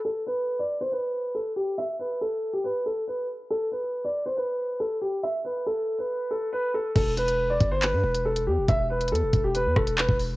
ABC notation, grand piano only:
X:1
M:4/4
L:1/16
Q:1/4=139
K:Ephr
V:1 name="Grand piano"
A2 B3 d2 c B4 A2 G2 | e2 B2 A3 G B2 A2 B2 z2 | A2 B3 d2 c B4 A2 G2 | e2 B2 A3 B3 A2 B2 A2 |
A2 B3 d2 c B4 A2 G2 | e2 B2 A3 G B2 A2 B2 z2 |]